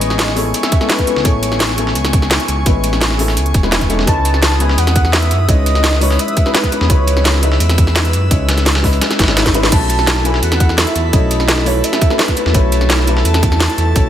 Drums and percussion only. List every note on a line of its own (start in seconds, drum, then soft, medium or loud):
0.01 closed hi-hat medium
0.10 snare soft
0.10 closed hi-hat soft
0.19 snare loud
0.19 closed hi-hat loud
0.19 closed hi-hat medium
0.28 snare medium
0.37 closed hi-hat medium
0.37 open hi-hat medium
0.54 closed hi-hat medium
0.63 snare soft
0.63 snare medium
0.63 closed hi-hat soft
0.72 kick loud
0.72 closed hi-hat medium
0.81 snare soft
0.90 snare loud
0.90 closed hi-hat medium
0.99 kick medium
0.99 snare soft
0.99 closed hi-hat soft
1.07 closed hi-hat medium
1.16 snare medium
1.25 kick loud
1.25 closed hi-hat medium
1.43 closed hi-hat medium
1.52 snare soft
1.60 snare loud
1.60 closed hi-hat medium
1.69 snare soft
1.78 closed hi-hat medium
1.87 snare soft
1.95 closed hi-hat medium
2.05 snare medium
2.05 closed hi-hat soft
2.13 kick loud
2.13 closed hi-hat medium
2.22 snare soft
2.31 snare loud
2.31 closed hi-hat medium
2.40 closed hi-hat soft
2.48 closed hi-hat medium
2.66 kick loud
2.66 closed hi-hat medium
2.84 closed hi-hat medium
2.93 snare soft
2.93 closed hi-hat soft
3.01 snare loud
3.01 closed hi-hat medium
3.11 snare medium
3.19 closed hi-hat medium
3.19 open hi-hat medium
3.28 snare medium
3.37 closed hi-hat medium
3.46 closed hi-hat soft
3.54 kick loud
3.54 closed hi-hat medium
3.63 snare soft
3.72 snare loud
3.72 closed hi-hat medium
3.81 kick medium
3.81 snare soft
3.81 closed hi-hat soft
3.90 closed hi-hat medium
3.99 snare medium
4.07 kick loud
4.07 closed hi-hat medium
4.25 closed hi-hat medium
4.34 snare soft
4.42 snare loud
4.42 closed hi-hat medium
4.52 snare soft
4.60 closed hi-hat medium
4.69 snare soft
4.78 closed hi-hat medium
4.87 snare medium
4.87 closed hi-hat soft
4.96 kick loud
4.96 closed hi-hat medium
5.05 snare soft
5.13 snare loud
5.13 closed hi-hat medium
5.22 closed hi-hat soft
5.31 closed hi-hat medium
5.49 kick loud
5.49 closed hi-hat medium
5.66 closed hi-hat medium
5.75 snare soft
5.75 closed hi-hat soft
5.84 snare loud
5.84 closed hi-hat medium
5.93 snare medium
6.01 closed hi-hat medium
6.01 open hi-hat medium
6.11 snare medium
6.19 closed hi-hat medium
6.28 closed hi-hat soft
6.37 kick loud
6.37 closed hi-hat medium
6.46 snare soft
6.55 snare loud
6.55 closed hi-hat medium
6.63 kick medium
6.63 snare soft
6.63 closed hi-hat soft
6.72 closed hi-hat medium
6.81 snare medium
6.90 kick loud
6.90 closed hi-hat medium
6.90 closed hi-hat loud
7.07 closed hi-hat medium
7.17 snare soft
7.25 snare loud
7.25 closed hi-hat medium
7.25 closed hi-hat loud
7.34 snare soft
7.43 closed hi-hat medium
7.52 snare soft
7.60 closed hi-hat medium
7.60 closed hi-hat loud
7.69 snare medium
7.69 closed hi-hat soft
7.78 kick loud
7.78 closed hi-hat medium
7.87 snare soft
7.96 snare loud
7.96 closed hi-hat medium
8.05 closed hi-hat soft
8.13 closed hi-hat medium
8.31 kick loud
8.31 closed hi-hat medium
8.31 closed hi-hat loud
8.49 snare loud
8.49 closed hi-hat medium
8.58 snare soft
8.58 closed hi-hat soft
8.66 snare loud
8.66 closed hi-hat loud
8.66 closed hi-hat medium
8.75 snare loud
8.75 closed hi-hat medium
8.84 kick medium
8.84 snare soft
8.84 open hi-hat medium
8.93 closed hi-hat medium
9.01 snare loud
9.01 closed hi-hat medium
9.01 closed hi-hat loud
9.10 snare soft
9.10 snare medium
9.10 closed hi-hat soft
9.19 kick loud
9.19 snare medium
9.19 closed hi-hat medium
9.24 snare medium
9.24 closed hi-hat medium
9.28 snare loud
9.28 closed hi-hat medium
9.37 snare loud
9.37 snare medium
9.37 closed hi-hat medium
9.46 kick medium
9.46 snare soft
9.46 snare medium
9.46 closed hi-hat soft
9.54 closed hi-hat medium
9.63 snare medium
9.72 kick loud
9.72 closed hi-hat medium
9.72 closed hi-hat loud
9.72 crash medium
9.90 closed hi-hat medium
9.99 snare soft
10.07 snare loud
10.07 closed hi-hat medium
10.07 closed hi-hat loud
10.16 snare soft
10.25 closed hi-hat medium
10.34 snare soft
10.43 closed hi-hat medium
10.43 closed hi-hat loud
10.52 snare medium
10.52 closed hi-hat soft
10.60 kick loud
10.60 closed hi-hat medium
10.69 snare soft
10.78 snare loud
10.78 closed hi-hat medium
10.87 closed hi-hat soft
10.96 closed hi-hat medium
11.13 kick loud
11.13 closed hi-hat loud
11.13 closed hi-hat medium
11.31 closed hi-hat medium
11.40 snare soft
11.40 closed hi-hat soft
11.48 snare loud
11.48 closed hi-hat medium
11.58 snare medium
11.66 closed hi-hat medium
11.66 open hi-hat medium
11.84 closed hi-hat loud
11.84 closed hi-hat medium
11.93 snare soft
11.93 snare medium
11.93 closed hi-hat soft
12.02 kick loud
12.02 closed hi-hat medium
12.10 snare soft
12.19 snare loud
12.19 closed hi-hat medium
12.28 kick medium
12.28 snare soft
12.28 closed hi-hat soft
12.37 closed hi-hat medium
12.46 snare medium
12.54 kick loud
12.54 closed hi-hat medium
12.72 closed hi-hat medium
12.81 snare soft
12.90 snare loud
12.90 closed hi-hat medium
12.99 snare soft
13.07 closed hi-hat medium
13.17 snare soft
13.25 closed hi-hat medium
13.34 snare medium
13.34 closed hi-hat soft
13.43 kick loud
13.43 closed hi-hat medium
13.52 snare soft
13.60 snare loud
13.60 closed hi-hat medium
13.70 closed hi-hat soft
13.78 closed hi-hat medium
13.96 kick loud
13.96 closed hi-hat medium